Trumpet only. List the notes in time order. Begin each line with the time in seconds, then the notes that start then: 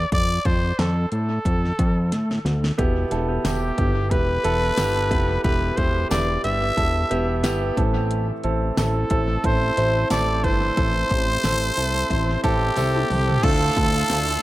Already playing: D5
0.13 D5
0.46 C5
0.79 A4
1.12 A4
3.45 G4
4.10 B4
5.44 B4
5.77 C5
6.10 D5
6.44 E5
8.79 A4
9.46 C5
10.11 D5
10.44 C5
12.43 G4
13.43 A4